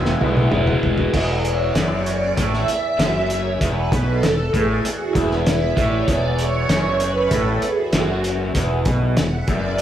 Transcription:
Already playing: E1 E2 B2 E3 G#3 B3 E4 F#4 E5 G#5
0.05 snare
0.21 B1 E2 B2 E3 G#3 B3 E4, high tom
0.37 high tom
0.51 E1 E2 B2 E3 G#3 B3 E4, mid tom
0.67 mid tom
0.82 E1, floor tom
0.98 floor tom
1.13 E1 E2, kick, crash
1.45 C#5, closed hi-hat
1.62 D5
1.75 F#1 F#2, snare, closed hi-hat
1.94 C#5
2.06 D5, closed hi-hat
2.36 A1 A2 E5, kick, closed hi-hat
2.54 snare
2.68 muted overdriven electric guitar stroke, closed hi-hat
2.88 E5
2.99 F#1 F#2, snare, closed hi-hat
3.30 C#5, closed hi-hat
3.61 E1 E2 B4, kick, closed hi-hat
3.92 B1 B2, kick, closed hi-hat
4.07 A4
4.23 E1 E2, snare, closed hi-hat
4.54 A1 A2 G#4, kick, closed hi-hat
4.85 F#4, muted overdriven electric guitar stroke, closed hi-hat
5.00 E4
5.15 E1 E2, kick, closed hi-hat
5.31 snare
5.46 E5, snare, closed hi-hat
5.75 A1 A2 D5, kick, closed hi-hat
5.86 D5
5.91 C#5
6.06 E1 E2 D5, kick, closed hi-hat
6.38 C#5, closed hi-hat
6.69 F#1 F#2, snare, closed hi-hat
6.99 B4, closed hi-hat
7.29 A1 A2 A4, kick, closed hi-hat
7.62 G#4, muted fretless electric bass stroke, muted overdriven electric guitar stroke, closed hi-hat
7.76 F#4
7.93 F#1 F#2, snare, closed hi-hat
8.24 closed hi-hat
8.55 E1 E2, kick, closed hi-hat
8.85 B1 B2, kick, closed hi-hat
9.17 E1 E2 F#5, snare, closed hi-hat
9.33 E5
9.45 F#1 D5, kick, closed hi-hat
9.49 F#2
9.77 E5, closed hi-hat

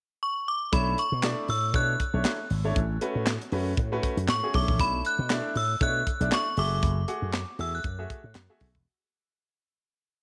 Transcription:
0.23 C#6
0.48 D6
0.72 B1 A3 D4 E4 C#5 B5, kick, closed hi-hat
0.98 C#6, closed hi-hat
1.12 B2
1.23 A3 D4 E4 D5, snare, clap, closed hi-hat
1.48 A2 E6, open hi-hat
1.74 B2 A3 D4 E4 C#5 F#6, kick, closed hi-hat
2.00 kick, closed hi-hat
2.14 B1 A3 D4 E4 C#5
2.25 snare, clap, closed hi-hat
2.50 G#1, open hi-hat
2.64 A3 D4 E4 C#5
2.76 A1, kick, closed hi-hat
3.01 A3 C#4 F#4 B4, closed hi-hat
3.15 A2
3.27 snare, clap, closed hi-hat
3.41 closed hi-hat
3.52 F#2 A3 C#4 F#4 B4, open hi-hat
3.77 A2, kick, closed hi-hat
3.92 A3 C#4 F#4 B4
4.03 kick, closed hi-hat
4.17 F#2, closed hi-hat
4.28 A2 C#6, snare, clap, closed hi-hat
4.43 A3 C#4 F#4 G#4
4.53 B1 A3 D4 E4 C#5 D6, kick, open hi-hat
4.68 A1, kick
4.79 B1 B5, kick, closed hi-hat
5.05 F#6, closed hi-hat
5.19 B2
5.30 A3 D4 E4 D5, snare, clap, closed hi-hat
5.55 A2 E6, open hi-hat
5.81 B2 A3 D4 E4 C#5 F#6, kick, closed hi-hat
6.07 kick, closed hi-hat
6.20 B1 A3 D4 E4 D5, closed hi-hat
6.32 C#6, snare, clap, closed hi-hat
6.57 F#1 A3 F#4 G#4 E5 D6, open hi-hat
6.83 F#1, kick, closed hi-hat
7.08 A3 F#4 G#4 F#5, closed hi-hat
7.22 F#2
7.33 snare, clap, closed hi-hat
7.59 E2 A3 F#4 G#4 E5 E6, open hi-hat
7.75 F#6
7.84 F#2, kick, closed hi-hat
7.98 A3 F#4 G#4 E5
8.10 kick, closed hi-hat
8.24 A2
8.35 F#2, snare, clap, closed hi-hat
8.49 A3 F#4 G#4 E5
8.60 B1, kick, open hi-hat
8.75 E1, kick

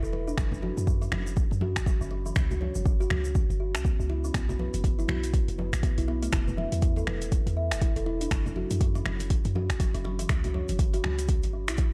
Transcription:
0.03 E1 A4, shaker
0.13 B4, muted conga
0.28 D4, shaker
0.37 F#1 F#3, finger snap, kick, muted conga, low conga, shaker
0.52 C#4, low conga, shaker
0.62 F#4, muted conga, high conga
0.77 F#2, high conga, shaker
0.87 F#3, kick, shaker
1.02 C#4, muted conga, shaker
1.12 F#1 C#4, finger snap, high conga, low conga
1.27 muted conga, shaker
1.37 kick, shaker
1.51 F#2, muted conga, shaker
1.61 F#4, high conga
1.76 F#1, finger snap, kick, low conga, shaker
1.86 F#3, kick, muted conga, shaker
2.01 F#1 C#4, shaker
2.11 C#4, muted conga
2.26 E3, shaker
2.36 C#2 C#4, finger snap, kick, muted conga, low conga, shaker
2.51 F#4, low conga, shaker
2.61 C#5, muted conga, high conga
2.75 G1, high conga, shaker
2.86 C#4, kick, shaker
3.00 F#4, muted conga, shaker
3.10 C#2, finger snap, high conga, low conga
3.25 muted conga, shaker
3.35 kick, high conga, shaker
3.50 G1, muted conga, shaker
3.60 F#4
3.75 C#2 C#4, finger snap, shaker
3.85 B3, kick, muted conga, shaker
4.00 C#2 F#4, shaker
4.10 E4, muted conga
4.24 C#4, shaker
4.34 B1 B3, finger snap, kick, closed hi-hat, muted conga, low conga, shaker
4.49 F#4, low conga, shaker
4.59 B4, muted conga, high conga
4.74 F#1, closed hi-hat, high conga, shaker
4.84 B3, kick, closed hi-hat, shaker
4.99 E4, muted conga, shaker
5.08 B1 F#4, finger snap, high conga, low conga
5.24 closed hi-hat, muted conga, shaker
5.34 kick, closed hi-hat, shaker
5.48 F#1, closed hi-hat, muted conga, shaker
5.58 B4, high conga
5.73 B1, finger snap, kick, closed hi-hat, low conga, shaker
5.83 B3, kick, closed hi-hat, muted conga, shaker
5.98 B1 E4, closed hi-hat, shaker
6.08 B3, muted conga
6.22 A3, closed hi-hat, shaker
6.32 E1 E4, finger snap, kick, closed hi-hat, muted conga, low conga, shaker
6.47 B4, low conga, shaker
6.57 E5, muted conga, high conga
6.72 E2, closed hi-hat, high conga, shaker
6.82 E4, kick, closed hi-hat, shaker
6.96 A4, muted conga, shaker
7.07 E1, finger snap, high conga, low conga
7.22 closed hi-hat, muted conga, shaker
7.32 kick, closed hi-hat, high conga, shaker
7.47 E2, closed hi-hat, muted conga, shaker
7.57 E5
7.71 E1, finger snap, closed hi-hat, shaker
7.81 E4, kick, closed hi-hat, muted conga, shaker
7.96 E1 A4, closed hi-hat, shaker
8.06 E4, muted conga
8.21 D4, closed hi-hat, shaker
8.31 F#1 F#3, finger snap, kick, closed hi-hat, muted conga, low conga, shaker
8.46 C#4, low conga, shaker
8.56 F#4, muted conga, high conga
8.71 F#2, closed hi-hat, high conga, shaker
8.80 F#3, kick, closed hi-hat, shaker
8.95 C#4, muted conga, shaker
9.05 F#1 C#4, finger snap, high conga, low conga
9.20 closed hi-hat, muted conga, shaker
9.30 kick, closed hi-hat, shaker
9.45 F#2, closed hi-hat, muted conga, shaker
9.55 F#4, high conga
9.69 F#1, finger snap, kick, closed hi-hat, low conga, shaker
9.80 F#3, kick, closed hi-hat, muted conga, shaker
9.94 F#1 C#4, closed hi-hat, shaker
10.04 F#3, muted conga
10.19 E3, closed hi-hat, shaker
10.29 C#2 C#4, finger snap, kick, closed hi-hat, muted conga, low conga, shaker
10.44 F#4, closed hi-hat, low conga, shaker
10.54 C#5, muted conga, high conga
10.69 G1, closed hi-hat, high conga, shaker
10.79 C#4, kick, closed hi-hat, shaker
10.93 F#4, closed hi-hat, muted conga, shaker
11.04 C#2 F#4, finger snap, high conga, low conga
11.19 closed hi-hat, muted conga, shaker
11.28 kick, closed hi-hat, high conga, shaker
11.43 G1, closed hi-hat, muted conga, shaker
11.53 C#4
11.68 B1 E4, finger snap, closed hi-hat, shaker
11.77 F#3, kick, closed hi-hat, muted conga, shaker

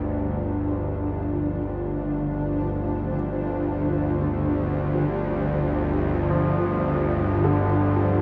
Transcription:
Already playing: G1 D2 D3 D4 F4 G4
1.23 C5
6.30 F3
7.44 D3

